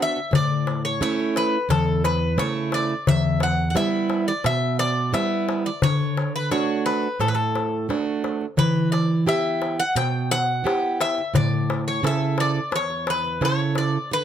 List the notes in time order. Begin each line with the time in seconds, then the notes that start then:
Already playing: B3 D4 F#4
0.02 E5
0.16 darbuka tek
0.31 A2 D5, darbuka dum
0.67 darbuka tek
0.85 C#5, darbuka tek
1.01 A3 C#4 E4 C#5, darbuka tek
1.19 darbuka tek
1.36 B4, darbuka tek
1.69 E2 A4, darbuka tek, darbuka dum
1.88 darbuka tek
2.04 B4, darbuka tek
2.38 C#3 A3 E4 C#5, darbuka tek
2.72 D5, darbuka tek
2.89 darbuka tek
3.07 E2 E5, darbuka dum
3.24 darbuka tek
3.40 F#5, darbuka tek
3.70 F#5
3.75 G3 B3 E4 E5, darbuka tek
4.10 darbuka tek
4.28 D5, darbuka tek
4.44 B2 E5, darbuka tek
4.79 D5, darbuka tek
5.13 G3 B3 E4 E5, darbuka tek
5.49 darbuka tek
5.65 D5, darbuka tek
5.82 D3 C#5, darbuka dum
6.00 darbuka tek
6.17 darbuka tek
6.36 B4
6.51 A3 D4 F#4 C#5, darbuka tek
6.86 B4, darbuka tek
7.03 darbuka tek
7.20 A2 A4, darbuka tek
7.28 B4
7.35 A4
7.55 darbuka tek
7.89 A3 D4 F#4, darbuka tek
8.24 darbuka tek
8.41 darbuka tek
8.57 E3 B4, darbuka dum
8.76 darbuka tek
8.92 D5, darbuka tek
9.26 B3 E4 G4 E5, darbuka tek
9.62 darbuka tek
9.80 F#5, darbuka tek
9.96 B2 G5, darbuka tek
10.31 F#5, darbuka tek
10.64 B3 E4 G4, darbuka tek
11.01 E5, darbuka tek
11.18 darbuka tek
11.34 A2 D5, darbuka dum
11.53 darbuka tek
11.70 darbuka tek
11.88 C#5
12.03 C#3 E4 A4 E5, darbuka tek
12.21 darbuka tek
12.38 D5, darbuka tek
12.56 darbuka tek
12.71 E2, darbuka tek
12.76 C#5
12.90 darbuka tek
13.07 B4, darbuka tek
13.24 darbuka tek
13.41 C#3 E4 A4 C#5, darbuka tek
13.59 darbuka tek
13.75 D5, darbuka tek
14.11 D3 B4